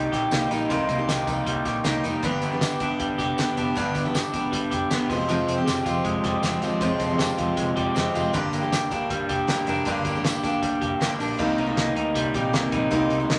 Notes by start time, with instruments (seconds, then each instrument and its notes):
Already playing: clean electric guitar C3 G3 A#3 D#4 G4, steel-string acoustic guitar G3 A#3 D#4 G4
0.12 fingered electric bass A#1, clean electric guitar G4, kick, snare, closed hi-hat
0.31 fingered electric bass C2, steel-string acoustic guitar G3 A#3 D#4 G4, clean electric guitar A#3, snare, closed hi-hat, tambourine
0.50 fingered electric bass A#1, steel-string acoustic guitar G3 A#3 D#4 G4, clean electric guitar D#4, closed hi-hat, tambourine
0.69 fingered electric bass C2, clean electric guitar C3, steel-string acoustic guitar C3 G3 A#3 D#4 G4, kick, closed hi-hat, tambourine
0.88 fingered electric bass C2, clean electric guitar A#3, kick, closed hi-hat, tambourine
0.98 steel-string acoustic guitar A#3 D#4 G4
1.08 fingered electric bass C2, clean electric guitar G4, snare, closed hi-hat, tambourine
1.27 fingered electric bass C2, steel-string acoustic guitar G3 A#3 D#4 G4, clean electric guitar D#4, kick, closed hi-hat, tambourine
1.46 fingered electric bass C2, clean electric guitar G3, kick, closed hi-hat, tambourine
1.65 fingered electric bass A#1, clean electric guitar G4, kick, snare, closed hi-hat, tambourine
1.84 fingered electric bass C2, steel-string acoustic guitar G3 A#3 D#4 G4, clean electric guitar A#3, snare, closed hi-hat, tambourine
2.03 fingered electric bass F1, steel-string acoustic guitar G3 A#3 D#4 G4, clean electric guitar D#4, closed hi-hat, tambourine
2.23 fingered electric bass G1, clean electric guitar G2, steel-string acoustic guitar G2 D3 G3 B3 D4 G4, kick, closed hi-hat, tambourine
2.42 fingered electric bass G1, clean electric guitar B3, closed hi-hat, tambourine
2.52 steel-string acoustic guitar G3 B3 D4 G4
2.61 fingered electric bass G1, clean electric guitar G4, snare, closed hi-hat, tambourine
2.80 fingered electric bass G1, steel-string acoustic guitar G3 B3 D4 G4, clean electric guitar D4, kick, closed hi-hat, tambourine
2.99 fingered electric bass G1, clean electric guitar G3, kick, closed hi-hat, tambourine
3.18 fingered electric bass F1, clean electric guitar G4, kick, snare, closed hi-hat, tambourine
3.37 fingered electric bass G1, steel-string acoustic guitar G3 B3 D4 G4, clean electric guitar B3, snare, closed hi-hat, tambourine
3.56 fingered electric bass F1, steel-string acoustic guitar G3 B3 D4 G4, clean electric guitar D4, closed hi-hat, tambourine
3.75 fingered electric bass G1, clean electric guitar G2, steel-string acoustic guitar G2 D3 G3 B3 D4 G4, kick, closed hi-hat, tambourine
3.94 fingered electric bass G1, clean electric guitar B3, kick, closed hi-hat, tambourine
4.05 steel-string acoustic guitar G3 B3 D4 G4
4.14 fingered electric bass G1, clean electric guitar G4, snare, closed hi-hat, tambourine
4.32 fingered electric bass G1, steel-string acoustic guitar G3 B3 D4 G4, clean electric guitar D4, kick, closed hi-hat, tambourine
4.52 fingered electric bass G1, clean electric guitar G3, kick, closed hi-hat, tambourine
4.71 fingered electric bass F1, clean electric guitar G4, kick, closed hi-hat, tambourine
4.90 fingered electric bass G1, steel-string acoustic guitar G3 B3 D4 G4, clean electric guitar B3, snare, closed hi-hat, tambourine
5.09 fingered electric bass F1, clean electric guitar F3, steel-string acoustic guitar F3 G#3 C4 G4, kick, open hi-hat, tambourine
5.28 steel-string acoustic guitar F2 C3 F3 G#3 C4 G4, clean electric guitar F3, closed hi-hat, tambourine
5.48 fingered electric bass F1, clean electric guitar C4, closed hi-hat, tambourine
5.58 steel-string acoustic guitar F3 G#3 C4 G4
5.66 fingered electric bass F1, clean electric guitar G4, snare, closed hi-hat, tambourine
5.85 fingered electric bass F1, steel-string acoustic guitar F3 G#3 C4 G4, clean electric guitar F4, kick, closed hi-hat, tambourine
6.04 fingered electric bass F1, clean electric guitar G#3, kick, closed hi-hat
6.24 fingered electric bass F1, clean electric guitar G4, kick, snare, closed hi-hat, tambourine
6.42 fingered electric bass F1, steel-string acoustic guitar F3 G#3 C4 G4, clean electric guitar C4, snare, closed hi-hat, tambourine
6.62 fingered electric bass G1, steel-string acoustic guitar F3 G#3 C4 G4, clean electric guitar F4, closed hi-hat, tambourine
6.80 fingered electric bass F1, steel-string acoustic guitar F2 C3 F3 G#3 C4 G4, clean electric guitar F3, kick, closed hi-hat, tambourine
7.00 fingered electric bass F1, clean electric guitar C4, kick, closed hi-hat, tambourine
7.09 steel-string acoustic guitar F3 G#3 C4 G4
7.18 fingered electric bass F1, clean electric guitar G4, snare, closed hi-hat, tambourine
7.37 fingered electric bass F1, steel-string acoustic guitar F3 G#3 C4 G4, clean electric guitar F4, kick, closed hi-hat, tambourine
7.57 fingered electric bass F1, clean electric guitar G#3, kick, closed hi-hat, tambourine
7.76 fingered electric bass F1, clean electric guitar G4, kick, closed hi-hat
7.95 fingered electric bass F1, steel-string acoustic guitar F3 G#3 C4 G4, clean electric guitar C4, snare, closed hi-hat, tambourine
8.14 fingered electric bass F1, steel-string acoustic guitar F3 G#3 C4 G4, clean electric guitar F4, closed hi-hat, tambourine
8.33 fingered electric bass G1, steel-string acoustic guitar G2 D3 G3 A#3 D4 G4, clean electric guitar G2, kick, closed hi-hat, tambourine
8.52 fingered electric bass G1, clean electric guitar A#3, closed hi-hat, tambourine
8.62 steel-string acoustic guitar G3 A#3 D4 G4
8.72 fingered electric bass G1, clean electric guitar G4, snare, closed hi-hat, tambourine
8.91 fingered electric bass G1, steel-string acoustic guitar G3 A#3 D4 G4, clean electric guitar D4, kick, closed hi-hat, tambourine
9.10 fingered electric bass G1, clean electric guitar G3, kick, closed hi-hat, tambourine
9.29 fingered electric bass F1, clean electric guitar G4, kick, closed hi-hat, tambourine
9.47 fingered electric bass G1, steel-string acoustic guitar G3 A#3 D4 G4, clean electric guitar A#3, snare, closed hi-hat, tambourine
9.67 fingered electric bass F1, steel-string acoustic guitar G3 A#3 D4 G4, clean electric guitar D4, closed hi-hat, tambourine
9.85 fingered electric bass G1, steel-string acoustic guitar G2 D3 G3 A#3 D4 G4, clean electric guitar G2, kick, closed hi-hat, tambourine
10.05 fingered electric bass G1, clean electric guitar A#3, kick, closed hi-hat, tambourine
10.15 steel-string acoustic guitar G3 A#3 D4 G4
10.24 fingered electric bass G1, clean electric guitar G4, snare, closed hi-hat, tambourine
10.43 fingered electric bass G1, steel-string acoustic guitar G3 A#3 D4 G4, clean electric guitar D4, kick, closed hi-hat, tambourine
10.62 fingered electric bass G1, clean electric guitar G3, kick, closed hi-hat, tambourine
10.81 fingered electric bass F1, clean electric guitar G4, kick, closed hi-hat
11.00 fingered electric bass G1, steel-string acoustic guitar G3 A#3 D4 G4, clean electric guitar A#3, snare, closed hi-hat, tambourine
11.19 fingered electric bass A#1, steel-string acoustic guitar G3 A#3 D4 G4, clean electric guitar D4, open hi-hat, tambourine
11.38 fingered electric bass C2, steel-string acoustic guitar C3 G3 A#3 D#4, clean electric guitar C3, kick, crash
11.57 fingered electric bass C2, clean electric guitar D#4, closed hi-hat
11.66 steel-string acoustic guitar G3 A#3 D#4
11.76 fingered electric bass C2, clean electric guitar A#3, snare, closed hi-hat
11.85 steel-string acoustic guitar G3 A#3 D#4
11.96 fingered electric bass D2, clean electric guitar D#4, closed hi-hat
12.15 fingered electric bass C2, clean electric guitar G3, kick, closed hi-hat
12.34 fingered electric bass A#1, steel-string acoustic guitar C3 G3 A#3 D#4, clean electric guitar G4, kick, closed hi-hat
12.53 fingered electric bass C2, steel-string acoustic guitar C3 G3 A#3 D#4, clean electric guitar A#3, snare, closed hi-hat
12.72 fingered electric bass A#1, steel-string acoustic guitar C3 G3 A#3 D#4, clean electric guitar D#4, kick, closed hi-hat
12.91 fingered electric bass C2, steel-string acoustic guitar C3 G3 A#3 D#4, clean electric guitar C3, kick, closed hi-hat
13.10 fingered electric bass C2, clean electric guitar D#4, closed hi-hat
13.20 steel-string acoustic guitar G3 A#3 D#4
13.29 fingered electric bass C2, clean electric guitar A#3, snare, closed hi-hat